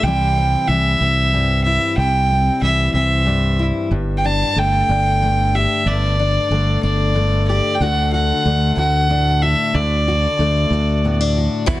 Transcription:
0.03 C2 C3 E3 G3 G5
0.07 C4 E4
0.38 C4
0.68 C2 E3 G3 E5
1.00 C2 C4
1.33 G2 G3
1.64 E4 E5
1.97 C2 C3 G5
2.31 C4
2.62 C2 E3 G3 E5
2.94 C2 C4 E5
3.26 G2 G3
3.59 E4
3.91 G1 G2
4.18 G5
4.24 D4 A5
4.56 G1 D3 A3 G5
4.89 G1 D4
5.22 G2 A3
5.55 G4 E5
5.86 G1 G2 D5
6.19 D4
6.50 G1 D3 A3
6.83 G1 D4 D5
7.15 G2 A3
7.48 G4 D5
7.74 G5
7.80 D2 D3 A3 D4 F#4 F#5
8.12 F#4 F#5
8.45 D2 A3 D4
8.77 D2 F#4 F#5
9.10 A2 D4
9.42 F#4 E5
9.75 D2 D3 D5
10.08 F#4
10.39 D2 A3 D4
10.70 D2 F#4
11.05 A2 B3
11.21 D4
11.37 F#4
11.66 E2 B2 E3 F#3 B3 E4 F#4, kick, closed hi-hat

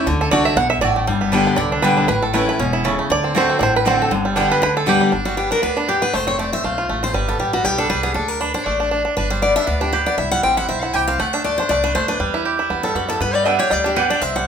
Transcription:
0.06 D2 D3
0.21 A4
0.31 C2 D3 A3 D4 F#4 D5 A5
0.45 E5
0.56 B1 B2 F#5
0.70 E5
0.81 A1 A2 A3 F#4 D5 A5
0.96 A3
1.07 G1 G2 G3
1.21 B3
1.32 D3 G3 B3 D4 G4 D5 G5
1.47 B3
1.56 C2 D3 D5
1.72 D4
1.82 B1 D3 G3 B3 G4 B4 D5 G5
1.97 D4
2.08 A1 A2 B4
2.22 A4
2.33 E3 A3 C#4 E4 B4 C#5 A5
2.49 B4
2.59 E1 B2 C#4
2.73 E4
2.84 C#3 A3 C#4 E4 C#5 A5
2.99 A3
3.09 D2 D3 D5
3.24 C4
3.34 D3 A3 C4 F#4 C5 D5 A5
3.50 C4
3.59 A1 A2 C5 D5
3.76 B4
3.85 D3 A3 C4 F#4 C5 D5 A5
4.02 A4
4.11 G1 G2 D3
4.25 G3
4.36 D3 G3 B3 D4 G4 D5 G5
4.51 B4
4.62 D2 D3 B4
4.77 A4
4.86 D3 G3 B3 G4 D5 G5
5.01 G3
5.12 G1 D4
5.25 G3 F#4
5.37 B3 G4
5.51 D4 A#4
5.62 D2 B3 B4
5.77 D4
5.88 G4
6.02 B3 B4
6.13 F1 A3 C5
6.27 C4 C#5
6.39 A3 D5
6.53 C4 E5
6.64 B1 A3 F5
6.78 F4
6.89 A1 A3
7.03 C4 C5
7.14 G1 G3 B4
7.28 B3 A4
7.39 A1 G3 G4
7.53 B3 F#4
7.64 B1 G3 G4
7.78 D4 A4
7.90 C2 G3 B4
8.03 B3 G#4
8.14 D2 D4 A4
8.28 A#4
8.41 D4 B4
8.54 D4 C5
8.66 A1 A3 D5
8.80 D4
8.91 D4
9.05 D4
9.17 G1 D4 B4
9.30 G3 C5
9.42 B3 D5
9.56 D4 E5
9.67 D2 B3 D5
9.81 D4 G4
9.93 G4 B4
10.06 B3 D5
10.18 C2 E4 E5
10.31 G3 F#5
10.43 A1 C4 G5
10.57 E4 F#5
10.68 B1 C4 E5
10.82 E4 F#5
10.94 C2 G4 G5
11.08 C4 F5
11.19 D2 A3 F#5
11.33 D4 E5
11.44 A3 D5
11.58 D4 C5
11.69 C2 A3 D5
11.84 D4 B4
11.95 D2 A3 C5
12.08 D4 B4
12.20 E2 G3
12.34 E4
12.45 G4
12.59 E4
12.70 E2 B3
12.83 G3 A4
12.95 F#2 B3 F#4
13.09 E4 A4
13.20 G2 B3 B4
13.34 G3 D5
13.45 B3 D4 G4 D5 E5 G5
13.59 G4 C#5
13.70 D2 G3 D5
13.84 D4 G4
13.96 B3 G4 B4 D5 G5
14.10 D4 D5
14.22 C2 C4 E5
14.36 G3 F#5

